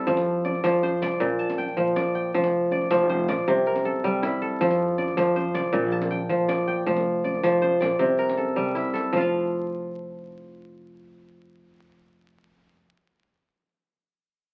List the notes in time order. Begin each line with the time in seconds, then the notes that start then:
Already playing: C3 G3 E4 A4
0.07 F2 F3, djembe bass
0.17 djembe slap, djembe tone
0.45 D5, djembe bass
0.55 djembe tone
0.64 F2 F3, djembe slap
0.83 C5, djembe bass
1.02 C2 D5, djembe slap, djembe tone
1.20 A#1 A#2, djembe bass
1.31 djembe slap
1.39 A5
1.50 djembe slap, djembe tone
1.58 G5, djembe bass
1.69 djembe slap
1.77 A#2 F3
1.96 D5, djembe slap, djembe tone, djembe bass
2.06 djembe slap
2.15 G5, djembe slap
2.34 F1 F3, djembe bass
2.44 djembe slap, djembe tone
2.71 D5, djembe bass
2.81 djembe tone
2.91 F1 F3, djembe slap
3.09 C5, djembe bass
3.28 A#1 D5, djembe slap, djembe tone
3.47 C2 C3, djembe bass
3.57 djembe slap
3.67 A#4
3.76 djembe slap, djembe tone
3.85 A4, djembe bass
3.95 djembe slap
4.04 C3 G3
4.23 E4, djembe slap, djembe tone, djembe bass
4.42 A4, djembe slap
4.61 F2 F3, djembe bass
4.71 djembe slap, djembe tone
4.98 D5, djembe bass
5.08 djembe tone
5.17 F2 F3, djembe slap
5.36 C5, djembe bass
5.54 C2 D5, djembe slap, djembe tone
5.73 A#1 A#2, djembe bass
5.83 djembe slap
5.92 A5
6.01 djembe slap, djembe tone
6.11 G5, djembe bass
6.21 djembe slap
6.29 A#2 F3
6.48 D5, djembe slap, djembe tone, djembe bass
6.59 djembe slap
6.67 G5, djembe slap
6.86 F1 F3, djembe slap, djembe bass
6.97 djembe slap, djembe tone
7.06 djembe slap
7.24 D5, djembe bass
7.35 djembe slap, djembe tone
7.43 F1 F3, djembe slap
7.62 C5, djembe bass
7.73 djembe slap
7.81 A#1 D5, djembe slap, djembe tone
7.99 C2 C3, djembe bass
8.19 A#4
8.29 djembe slap, djembe tone
8.37 A4, djembe bass
8.56 C3 G3, djembe bass
8.75 E4, djembe slap
8.94 A4, djembe slap
9.13 F1 F3, djembe bass
9.17 F4 F5